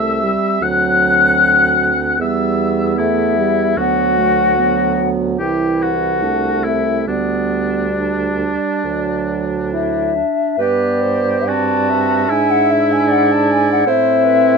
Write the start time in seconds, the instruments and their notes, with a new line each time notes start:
Already playing: bassoon C2, french horn A3, clarinet C4, oboe E5, flute E6
0.23 french horn G3
0.61 bassoon D2, french horn F#3, oboe F#5, flute F#6
2.19 bassoon E2, french horn G3, clarinet B3, oboe E5, flute E6
2.98 french horn A3, oboe E4, flute E5
3.38 french horn G3
3.77 bassoon D2, french horn F#3, clarinet B3, oboe F#4, flute F#5
4.18 clarinet A3
4.58 french horn F#3, clarinet B3
5.39 bassoon C2, french horn E3, clarinet E4, oboe G4, flute G5
5.82 oboe F#4, flute F#5
6.22 french horn A3, clarinet D4
6.64 clarinet C4, oboe E4, flute E5
7.07 bassoon D2, french horn G3, clarinet B3, oboe D4, flute D5
7.97 clarinet D4
8.84 bassoon D2, french horn F#3
9.72 clarinet E4, flute E5
10.15 clarinet D4
10.58 bassoon G2, french horn B3, oboe G4, clarinet B4, flute D5
11.02 clarinet C5
11.47 french horn C4, oboe F#4, clarinet D5, flute A5
11.90 clarinet E5
12.28 bassoon G#2, french horn D4, oboe E4, flute G#5
12.50 flute F#5
12.70 flute E5
12.92 flute G#5
13.08 clarinet D5, flute F#5
13.31 flute A5
13.51 flute G#5
13.71 flute F#5
13.87 bassoon A2, french horn C4, oboe E4, clarinet C5, flute E5
14.24 clarinet B4